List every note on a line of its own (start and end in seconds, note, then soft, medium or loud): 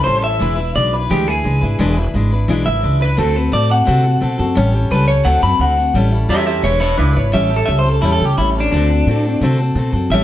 0.04 0.36 A1 medium
0.04 0.23 G3 medium
0.04 0.22 C#4 medium
0.04 0.21 E4 medium
0.04 0.20 A4 medium
0.04 0.22 C5 medium
0.21 0.39 G3 soft
0.21 0.40 C#4 soft
0.21 0.40 E4 soft
0.21 0.40 A4 medium
0.21 0.74 E5 loud
0.39 0.71 E1 medium
0.39 0.58 E3 medium
0.39 0.58 G#3 medium
0.39 0.58 D4 medium
0.39 0.56 E4 medium
0.39 0.54 B4 loud
0.55 0.74 D4 soft
0.55 0.75 E4 medium
0.55 0.74 B4 medium
0.74 1.05 B1 loud
0.74 0.92 G#3 medium
0.74 0.93 D4 medium
0.74 0.94 E4 medium
0.74 0.92 B4 medium
0.74 0.94 D5 medium
0.93 1.10 D4 soft
0.93 1.10 E4 medium
0.93 1.10 B4 medium
1.10 1.40 D2 loud
1.10 1.27 E3 medium
1.10 1.28 G#3 medium
1.10 1.28 D4 medium
1.10 1.28 E4 medium
1.10 1.28 G4 medium
1.10 1.26 B4 medium
1.27 1.44 D4 soft
1.27 1.45 E4 medium
1.27 1.95 G#4 loud
1.27 1.45 B4 medium
1.44 1.60 C#2 medium
1.44 1.62 G#3 medium
1.44 1.63 D4 medium
1.44 1.62 E4 medium
1.44 1.60 B4 medium
1.61 1.77 G#1 medium
1.61 1.79 D4 soft
1.61 1.80 E4 soft
1.61 1.79 B4 medium
1.79 2.09 E1 medium
1.79 1.97 E3 loud
1.79 1.97 G#3 loud
1.79 1.97 D4 loud
1.79 1.97 E4 loud
1.79 1.96 B4 loud
1.97 2.15 D4 medium
1.97 2.15 E4 medium
1.97 2.14 B4 medium
2.14 2.43 G#1 loud
2.14 2.32 G#3 medium
2.14 2.32 D4 medium
2.14 2.32 E4 medium
2.18 2.31 B4 medium
2.32 2.48 D4 medium
2.32 2.49 E4 medium
2.32 2.49 B4 medium
2.48 2.63 B1 medium
2.48 2.66 E3 medium
2.48 2.67 G#3 medium
2.48 2.66 D4 loud
2.48 2.65 E4 loud
2.48 2.64 B4 loud
2.65 2.81 G#1 medium
2.65 2.82 D4 soft
2.65 2.82 E4 medium
2.65 2.83 B4 medium
2.65 3.00 E5 loud
2.81 3.13 C#2 medium
2.81 3.00 G#3 medium
2.81 3.01 D4 medium
2.81 3.01 E4 medium
2.81 2.99 B4 medium
3.00 3.19 E4 medium
3.00 3.18 B4 medium
3.00 3.18 B4 loud
3.04 3.18 D4 soft
3.17 3.47 D2 medium
3.17 3.35 D3 medium
3.17 3.35 A3 medium
3.17 3.35 C4 medium
3.17 3.35 F#4 loud
3.17 3.36 A4 medium
3.17 3.33 A4 loud
3.34 3.52 C4 medium
3.34 3.52 F#4 medium
3.34 3.52 A4 medium
3.34 3.53 B4 medium
3.52 3.82 A2 medium
3.52 3.69 A3 medium
3.52 3.70 C4 medium
3.52 3.69 F#4 medium
3.52 3.68 A4 medium
3.52 3.70 D5 medium
3.69 3.86 C4 soft
3.69 3.86 F#4 soft
3.69 3.87 A4 medium
3.69 4.71 F#5 loud
3.85 4.17 C3 medium
3.85 4.03 D3 medium
3.85 4.04 A3 medium
3.85 4.04 C4 medium
3.85 4.05 F#4 medium
3.85 4.02 A4 medium
4.03 4.20 C4 soft
4.03 4.22 F#4 medium
4.03 4.21 A4 medium
4.21 4.36 B2 medium
4.21 4.38 A3 medium
4.21 4.39 C4 medium
4.21 4.39 F#4 medium
4.21 4.37 A4 medium
4.38 4.54 F#2 medium
4.38 4.56 C4 medium
4.38 4.57 F#4 medium
4.38 4.56 A4 medium
4.55 4.86 A1 loud
4.55 4.73 A2 medium
4.55 4.73 E3 loud
4.55 4.74 G3 loud
4.55 4.74 C#4 loud
4.55 4.73 G4 loud
4.55 4.71 A4 loud
4.72 4.89 G3 medium
4.72 4.91 C#4 medium
4.72 4.91 G4 medium
4.72 4.90 A4 medium
4.91 5.20 C#2 medium
4.91 5.08 G3 medium
4.91 5.09 C#4 medium
4.91 5.08 G4 medium
4.91 5.07 A4 medium
4.91 5.07 B4 loud
5.08 5.25 G3 soft
5.08 5.26 C#4 soft
5.08 5.26 G4 medium
5.08 5.25 A4 medium
5.08 5.25 C#5 medium
5.25 5.40 D2 medium
5.25 5.42 D3 medium
5.25 5.43 A3 medium
5.25 5.43 C4 medium
5.25 5.42 F#4 medium
5.25 5.41 A4 loud
5.25 5.42 F#5 loud
5.42 5.57 F#2 medium
5.42 5.59 C4 medium
5.42 5.60 F#4 medium
5.42 5.59 A4 medium
5.42 5.60 B5 loud
5.59 5.89 D2 medium
5.59 5.77 A3 medium
5.59 5.78 C4 medium
5.59 5.77 F#4 medium
5.59 5.75 A4 medium
5.59 5.94 F#5 loud
5.77 5.96 C4 soft
5.77 5.95 F#4 medium
5.77 5.94 A4 medium
5.94 6.24 A1 medium
5.94 6.12 A2 medium
5.94 6.12 E3 medium
5.94 6.12 G3 medium
5.94 6.12 C#4 medium
5.94 6.11 E4 medium
5.94 6.09 A4 medium
6.10 6.28 G3 medium
6.10 6.30 C#4 medium
6.10 6.29 E4 medium
6.10 6.28 A4 medium
6.29 6.58 E2 loud
6.29 6.46 G3 medium
6.29 6.47 C#4 medium
6.29 6.46 E4 medium
6.29 6.45 G4 medium
6.29 6.45 A4 medium
6.29 6.46 E5 loud
6.46 6.63 G3 soft
6.46 6.63 C#4 medium
6.46 6.63 E4 soft
6.46 6.62 G4 medium
6.46 6.63 A4 medium
6.46 6.63 E5 medium
6.63 6.93 E1 loud
6.63 6.81 E3 medium
6.63 6.81 G#3 medium
6.63 6.81 D4 medium
6.63 6.79 E4 loud
6.63 6.80 E4 medium
6.63 6.78 B4 loud
6.63 6.80 C#5 loud
6.80 6.98 D4 soft
6.80 6.97 E4 medium
6.80 6.98 E4 medium
6.80 6.98 B4 medium
6.80 6.98 C#5 loud
6.97 7.13 C#2 medium
6.97 7.15 G#3 medium
6.97 7.14 D4 medium
6.97 7.16 D4 medium
6.97 7.14 E4 medium
6.97 7.17 B4 medium
6.97 7.12 B4 medium
7.13 7.31 G#1 medium
7.13 7.33 D4 soft
7.13 7.33 E4 medium
7.13 7.32 B4 medium
7.13 7.33 C#5 loud
7.32 7.63 A1 medium
7.32 7.50 A2 medium
7.32 7.50 E3 medium
7.32 7.50 G3 medium
7.32 7.50 C#4 loud
7.32 7.49 G4 medium
7.32 7.48 A4 medium
7.32 7.56 E5 loud
7.49 7.65 G3 medium
7.49 7.66 C#4 soft
7.49 7.67 G4 medium
7.49 7.67 A4 medium
7.56 7.67 A4 medium
7.66 7.97 C#2 medium
7.66 7.84 G3 medium
7.66 7.85 C#4 medium
7.66 7.84 G4 medium
7.66 7.82 A4 medium
7.66 7.78 E5 medium
7.79 7.89 C5 medium
7.83 8.02 G3 soft
7.83 8.03 C#4 soft
7.83 8.02 G4 medium
7.83 8.02 A4 medium
7.89 8.01 A4 medium
8.02 8.17 E2 medium
8.02 8.20 A2 medium
8.02 8.20 E3 medium
8.02 8.20 G3 medium
8.02 8.20 C#4 medium
8.02 8.12 E4 medium
8.02 8.21 G4 loud
8.02 8.19 A4 loud
8.12 8.25 A4 medium
8.20 8.35 C#2 medium
8.20 8.37 G3 soft
8.20 8.38 C#4 soft
8.20 8.38 G4 medium
8.20 8.37 A4 medium
8.25 8.37 G4 medium
8.38 8.67 A1 medium
8.38 8.55 G3 soft
8.38 8.56 C#4 medium
8.38 8.49 E4 medium
8.38 8.56 G4 medium
8.38 8.54 A4 medium
8.55 8.73 G3 soft
8.55 8.73 C#4 medium
8.55 8.73 G4 medium
8.55 8.72 A4 medium
8.60 8.71 D4 medium
8.72 9.01 D2 loud
8.72 8.90 D3 medium
8.72 8.90 A3 medium
8.72 8.91 C4 medium
8.72 9.39 D4 loud
8.72 8.91 F#4 loud
8.72 8.89 A4 medium
8.90 9.07 C4 soft
8.90 9.08 F#4 medium
8.90 9.07 A4 medium
9.07 9.36 A2 medium
9.07 9.24 A3 medium
9.07 9.25 C4 medium
9.07 9.25 F#4 medium
9.11 9.24 A4 medium
9.25 9.42 C4 medium
9.25 9.42 F#4 medium
9.25 9.42 A4 medium
9.41 9.70 C3 medium
9.41 9.59 D3 loud
9.41 9.59 A3 medium
9.41 9.60 C4 loud
9.41 9.60 F#4 loud
9.41 9.57 A4 loud
9.58 9.77 F#4 medium
9.58 9.76 A4 medium
9.62 9.76 C4 medium
9.75 9.90 B2 medium
9.75 9.93 A3 medium
9.75 9.94 C4 medium
9.75 9.94 F#4 medium
9.75 9.91 A4 medium
9.92 10.08 F#2 medium
9.92 10.12 C4 medium
9.92 10.11 F#4 medium
9.92 10.10 A4 medium
10.10 10.24 A1 medium
10.10 10.24 A2 loud
10.10 10.24 E3 medium
10.10 10.24 G3 medium
10.10 10.24 C#4 medium
10.10 10.24 G4 loud
10.10 10.24 A4 loud
10.10 10.24 E5 loud